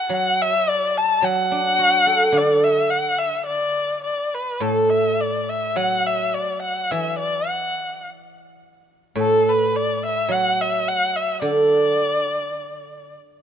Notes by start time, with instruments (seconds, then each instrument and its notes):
Already playing: erhu F#5
0.09 guzheng F#3
0.16 erhu F#5
0.42 erhu E5
0.69 erhu D5
0.98 erhu A5
1.22 guzheng F#3, erhu F#5
1.51 guzheng D4
1.79 guzheng F#4
2.06 guzheng A4
2.32 guzheng D3
2.38 erhu D5
2.64 erhu E5
2.90 erhu F#5
3.18 erhu E5
3.46 erhu D5
4.04 erhu D5
4.35 erhu B4
4.60 guzheng A2, erhu A4
4.90 erhu E5
5.21 erhu D5
5.49 erhu E5
5.76 guzheng F#3, erhu F#5
6.06 erhu E5
6.34 erhu D5
6.62 erhu F#5
6.91 guzheng E3, erhu E5
7.19 erhu D5
7.49 erhu F#5
9.15 guzheng A2, erhu A4
9.49 erhu B4
9.76 erhu D5
10.06 erhu E5
10.29 guzheng F#3, erhu F#5
10.61 erhu E5
10.88 erhu F#5
11.16 erhu E5
11.42 guzheng D3, erhu D5